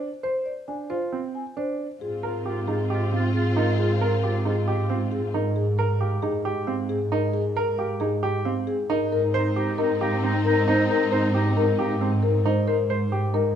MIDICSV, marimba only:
0, 0, Header, 1, 2, 480
1, 0, Start_track
1, 0, Key_signature, -4, "major"
1, 0, Tempo, 444444
1, 251, Time_signature, 4, 2, 24, 8
1, 14638, End_track
2, 0, Start_track
2, 0, Title_t, "Marimba"
2, 0, Program_c, 0, 12
2, 256, Note_on_c, 0, 72, 66
2, 492, Note_on_c, 0, 74, 52
2, 565, Note_off_c, 0, 72, 0
2, 732, Note_on_c, 0, 80, 44
2, 803, Note_off_c, 0, 74, 0
2, 969, Note_on_c, 0, 72, 59
2, 1043, Note_off_c, 0, 80, 0
2, 1282, Note_off_c, 0, 72, 0
2, 1458, Note_on_c, 0, 80, 45
2, 1697, Note_on_c, 0, 72, 56
2, 1765, Note_off_c, 0, 80, 0
2, 2005, Note_off_c, 0, 72, 0
2, 2174, Note_on_c, 0, 68, 67
2, 2408, Note_on_c, 0, 70, 55
2, 2484, Note_off_c, 0, 68, 0
2, 2646, Note_on_c, 0, 77, 53
2, 2722, Note_off_c, 0, 70, 0
2, 2887, Note_on_c, 0, 68, 72
2, 2961, Note_off_c, 0, 77, 0
2, 3133, Note_on_c, 0, 75, 55
2, 3202, Note_off_c, 0, 68, 0
2, 3365, Note_on_c, 0, 77, 50
2, 3444, Note_off_c, 0, 75, 0
2, 3610, Note_on_c, 0, 68, 65
2, 3681, Note_off_c, 0, 77, 0
2, 3853, Note_on_c, 0, 70, 55
2, 3922, Note_off_c, 0, 68, 0
2, 4089, Note_on_c, 0, 68, 72
2, 4164, Note_off_c, 0, 70, 0
2, 4333, Note_on_c, 0, 70, 55
2, 4402, Note_off_c, 0, 68, 0
2, 4569, Note_on_c, 0, 77, 54
2, 4643, Note_off_c, 0, 70, 0
2, 4811, Note_on_c, 0, 68, 68
2, 4882, Note_off_c, 0, 77, 0
2, 5050, Note_on_c, 0, 75, 58
2, 5123, Note_off_c, 0, 68, 0
2, 5286, Note_on_c, 0, 77, 54
2, 5363, Note_off_c, 0, 75, 0
2, 5525, Note_on_c, 0, 68, 68
2, 5601, Note_off_c, 0, 77, 0
2, 5763, Note_on_c, 0, 70, 57
2, 5841, Note_off_c, 0, 68, 0
2, 6002, Note_on_c, 0, 68, 72
2, 6080, Note_off_c, 0, 70, 0
2, 6241, Note_on_c, 0, 70, 61
2, 6320, Note_off_c, 0, 68, 0
2, 6490, Note_on_c, 0, 77, 59
2, 6559, Note_off_c, 0, 70, 0
2, 6721, Note_on_c, 0, 68, 76
2, 6802, Note_off_c, 0, 77, 0
2, 6973, Note_on_c, 0, 75, 62
2, 7039, Note_off_c, 0, 68, 0
2, 7204, Note_on_c, 0, 77, 60
2, 7284, Note_off_c, 0, 75, 0
2, 7445, Note_on_c, 0, 68, 81
2, 7521, Note_off_c, 0, 77, 0
2, 7689, Note_on_c, 0, 70, 60
2, 7761, Note_off_c, 0, 68, 0
2, 7922, Note_on_c, 0, 68, 81
2, 8002, Note_off_c, 0, 70, 0
2, 8165, Note_on_c, 0, 70, 65
2, 8240, Note_off_c, 0, 68, 0
2, 8404, Note_on_c, 0, 77, 61
2, 8481, Note_off_c, 0, 70, 0
2, 8640, Note_on_c, 0, 68, 77
2, 8720, Note_off_c, 0, 77, 0
2, 8889, Note_on_c, 0, 75, 65
2, 8959, Note_off_c, 0, 68, 0
2, 9128, Note_on_c, 0, 77, 71
2, 9202, Note_off_c, 0, 75, 0
2, 9366, Note_on_c, 0, 68, 77
2, 9442, Note_off_c, 0, 77, 0
2, 9611, Note_on_c, 0, 70, 66
2, 9681, Note_off_c, 0, 68, 0
2, 9841, Note_off_c, 0, 70, 0
2, 9854, Note_on_c, 0, 70, 81
2, 10090, Note_on_c, 0, 72, 67
2, 10164, Note_off_c, 0, 70, 0
2, 10332, Note_on_c, 0, 79, 64
2, 10403, Note_off_c, 0, 72, 0
2, 10564, Note_on_c, 0, 70, 78
2, 10643, Note_off_c, 0, 79, 0
2, 10810, Note_on_c, 0, 77, 66
2, 10880, Note_off_c, 0, 70, 0
2, 11052, Note_on_c, 0, 79, 65
2, 11122, Note_off_c, 0, 77, 0
2, 11285, Note_on_c, 0, 70, 85
2, 11363, Note_off_c, 0, 79, 0
2, 11532, Note_on_c, 0, 72, 69
2, 11601, Note_off_c, 0, 70, 0
2, 11770, Note_on_c, 0, 70, 86
2, 11843, Note_off_c, 0, 72, 0
2, 12015, Note_on_c, 0, 72, 63
2, 12083, Note_off_c, 0, 70, 0
2, 12254, Note_on_c, 0, 79, 64
2, 12324, Note_off_c, 0, 72, 0
2, 12494, Note_on_c, 0, 70, 82
2, 12564, Note_off_c, 0, 79, 0
2, 12735, Note_on_c, 0, 77, 60
2, 12804, Note_off_c, 0, 70, 0
2, 12975, Note_on_c, 0, 79, 68
2, 13044, Note_off_c, 0, 77, 0
2, 13203, Note_on_c, 0, 70, 80
2, 13284, Note_off_c, 0, 79, 0
2, 13448, Note_on_c, 0, 72, 64
2, 13520, Note_off_c, 0, 70, 0
2, 13689, Note_on_c, 0, 70, 83
2, 13762, Note_off_c, 0, 72, 0
2, 13935, Note_on_c, 0, 72, 61
2, 14002, Note_off_c, 0, 70, 0
2, 14174, Note_on_c, 0, 79, 57
2, 14244, Note_off_c, 0, 72, 0
2, 14408, Note_on_c, 0, 70, 77
2, 14484, Note_off_c, 0, 79, 0
2, 14638, Note_off_c, 0, 70, 0
2, 14638, End_track
0, 0, End_of_file